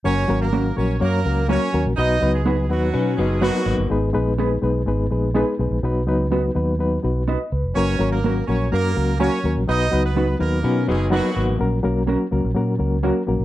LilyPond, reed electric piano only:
\new Staff \with { instrumentName = "Reed electric piano" } { \time 4/4 \key fis \major \tempo 4 = 125 << { r1 | r1 | r1 | r2. dis''8 b'8~ |
b'8 r2. r8 | r1 | r1 | } \\ { <fis ais cis' fis' ais'>8 <fis ais cis' fis' ais'>8 <fis ais cis' fis' ais'>8 <fis ais cis' fis' ais'>8 <fis ais cis' fis' cis''>8 <fis ais cis' fis' ais'>8 <fis ais cis' fis' ais'>8 <fis ais cis' fis' ais'>8 | <fis b dis' fis' b'>8 <fis b dis' fis' b'>8 <fis b dis' fis' b'>8 <fis b dis' fis' b'>8 <fis b dis' fis' b'>8 <fis b dis' fis' b'>8 <fis b dis' fis' b'>8 <fis b dis' fis' b'>8 | <gis b dis' gis' b'>8 <gis b dis' gis' b'>8 <gis b dis' gis' b'>8 <gis b dis' gis' b'>8 <gis b dis' gis' b'>8 <gis b dis' gis' b'>8 <gis b dis' gis' b'>8 <gis b dis' gis' b'>8 | <fis b dis' fis' b'>8 <fis b dis' fis' b'>8 <fis b dis' fis' b'>8 <fis b dis' fis' b'>8 <fis b dis' fis' b'>8 <fis b dis' fis' b'>8 r4 |
<fis ais cis' fis' ais'>8 <fis ais cis' fis' ais'>8 <fis ais cis' fis' ais'>8 <fis ais cis' fis' ais'>8 <fis ais cis' fis' ais'>8 <fis ais cis' fis' ais'>8 <fis ais cis' fis' ais'>8 <fis ais cis' fis' ais'>8 | <fis b dis' fis' b'>8 <fis b dis' fis' b'>8 <fis b dis' fis' b'>8 <fis b dis' fis' b'>8 <fis b dis' fis' b'>8 <fis b dis' fis' b'>8 <fis b dis' fis' b'>8 <fis b dis' fis' b'>8 | <fis ais cis' fis' ais'>8 <fis ais cis' fis' ais'>8 <fis ais cis' fis' ais'>8 <fis ais cis' fis' ais'>8 <fis ais cis' fis' ais'>8 <fis ais cis' fis' ais'>8 <fis ais cis' fis' ais'>8 <fis ais cis' fis' ais'>8 | } >> }